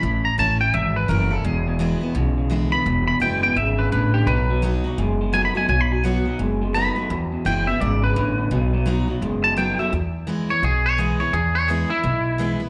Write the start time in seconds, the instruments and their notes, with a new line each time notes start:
Already playing: clean electric guitar B5
0.03 upright bass A1, steel-string acoustic guitar A2
0.25 clean electric guitar A#5
0.38 upright bass A1, steel-string acoustic guitar E3 A3 C#4 E4, clean electric guitar A5
0.60 steel-string acoustic guitar C#4 E4, clean electric guitar G5
0.74 upright bass G#1, steel-string acoustic guitar E2, clean electric guitar E5
0.96 clean electric guitar B4
1.08 upright bass F#1, steel-string acoustic guitar E3 A3 C#4 E4, clean electric guitar A#4
1.30 steel-string acoustic guitar C#4 E4, clean electric guitar A4
1.44 upright bass E1, steel-string acoustic guitar E2, clean electric guitar E2 B2 G#4
1.67 clean electric guitar E2 B2
1.79 clean electric guitar E2 B2, steel-string acoustic guitar E3 G#3 B3 E4
2.01 clean electric guitar E2 B2, steel-string acoustic guitar B3 E4
2.15 upright bass B1, clean electric guitar E2 C#3, steel-string acoustic guitar B2
2.38 clean electric guitar E2 C#3
2.50 clean electric guitar E2 D3, steel-string acoustic guitar E3 G#3 B3 E4
2.72 clean electric guitar E2 D3 B5, steel-string acoustic guitar B3 E4
2.86 upright bass E1, clean electric guitar E2 B2, steel-string acoustic guitar E2
3.08 clean electric guitar E2 B2 B5
3.20 upright bass F#1, clean electric guitar E2 B2 G5, steel-string acoustic guitar E3 G#3 B3 E4
3.43 clean electric guitar E2 B2 G5
3.56 upright bass G#1, clean electric guitar E2 C#3 E5, steel-string acoustic guitar G#2
3.79 clean electric guitar E2 C#3 B4
3.92 upright bass A1, clean electric guitar E2 D3 B4, steel-string acoustic guitar A2
4.14 clean electric guitar E2 D3 G4
4.27 upright bass B1, steel-string acoustic guitar B2, clean electric guitar B2 F#3 B4
4.50 clean electric guitar B2 F#3
4.62 clean electric guitar B2 F#3, steel-string acoustic guitar F#3 B3 D#4 F#4
4.84 clean electric guitar B2 F#3, steel-string acoustic guitar D#4 F#4
4.98 upright bass F#1, steel-string acoustic guitar F#2, clean electric guitar B2 G#3
5.21 clean electric guitar B2 G#3
5.33 clean electric guitar B2 A3 G#5, steel-string acoustic guitar F#3 B3 D#4 F#4
5.45 clean electric guitar B5
5.55 clean electric guitar B2 A3 G#5, steel-string acoustic guitar D#4 F#4
5.69 upright bass B1, steel-string acoustic guitar B2, clean electric guitar B2 F#3 G#5
5.81 clean electric guitar B5
5.91 clean electric guitar B2 F#3 G#5
6.04 clean electric guitar B2 F#3 F#5, steel-string acoustic guitar F#3 B3 D#4 F#4
6.25 clean electric guitar B2 F#3, steel-string acoustic guitar D#4 F#4
6.39 upright bass F#1, steel-string acoustic guitar F#2, clean electric guitar B2 G#3
6.62 clean electric guitar B2 G#3
6.74 clean electric guitar B2 A3 B5, steel-string acoustic guitar F#3 B3 D#4 F#4
6.96 clean electric guitar B2 A3, steel-string acoustic guitar D#4 F#4
7.10 upright bass E2, clean electric guitar E2 B2, steel-string acoustic guitar E2
7.27 clean electric guitar A5
7.32 clean electric guitar E2 B2
7.45 upright bass F#1, clean electric guitar E2 B2 G5, steel-string acoustic guitar E3 G#3 B3 E4
7.67 clean electric guitar E2 B2 E5, steel-string acoustic guitar B3 E4
7.80 upright bass G#1, clean electric guitar E2 C#3 D5, steel-string acoustic guitar G#2
8.02 clean electric guitar E2 C#3 B4
8.16 upright bass A1, clean electric guitar E2 D3, steel-string acoustic guitar A2
8.38 clean electric guitar E2 D3
8.51 upright bass B1, steel-string acoustic guitar B2, clean electric guitar B2 F#3
8.73 clean electric guitar B2 F#3
8.86 clean electric guitar B2 F#3, steel-string acoustic guitar F#3 B3 D#4 F#4
9.08 clean electric guitar B2 F#3, steel-string acoustic guitar D#4 F#4
9.22 upright bass F#1, steel-string acoustic guitar F#2, clean electric guitar B2 G#3
9.44 clean electric guitar B2 G#3 A5
9.57 clean electric guitar B2 A3 G5, steel-string acoustic guitar F#3 B3 D#4 F#4
9.79 clean electric guitar B2 A3 E5, steel-string acoustic guitar D#4 F#4
9.93 upright bass E2, steel-string acoustic guitar E2
10.27 steel-string acoustic guitar E3 G#3 B3 E4
10.49 steel-string acoustic guitar B3 E4, clean electric guitar C#5
10.63 upright bass B1, steel-string acoustic guitar B2, clean electric guitar G#4
10.86 clean electric guitar C#5
10.98 steel-string acoustic guitar E3 G#3 B3 E4, clean electric guitar G#4
11.20 steel-string acoustic guitar B3 E4, clean electric guitar C#5
11.33 upright bass E2, steel-string acoustic guitar E2, clean electric guitar G#4
11.55 clean electric guitar C#5
11.68 steel-string acoustic guitar E3 G#3 B3 E4, clean electric guitar G#4
11.90 steel-string acoustic guitar B3 E4, clean electric guitar E4
12.03 upright bass B1, steel-string acoustic guitar B2
12.38 steel-string acoustic guitar E3 G#3 B3 E4
12.60 steel-string acoustic guitar B3 E4